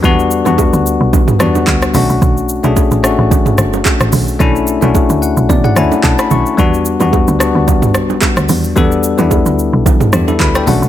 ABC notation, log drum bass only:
X:1
M:4/4
L:1/16
Q:"Swing 16ths" 1/4=110
K:Edor
V:1 name="Log drum bass" clef=bass
E,,3 E,,2 D,,2 B,,,3 E,,2 D,,2 B,,, B,,, | B,,,3 B,,,2 A,,,2 A,,,3 G,,,2 z A,,, B,,,2 | B,,,3 B,,,2 D,,2 B,,, B,, z D,, z B,,, z B,,, z | E,,3 E,,2 D,,2 D,,3 B,,,2 z D,, E,,2 |
E,,3 E,,2 D,,2 B,,,3 E,,2 D,,2 B,,, B,,, |]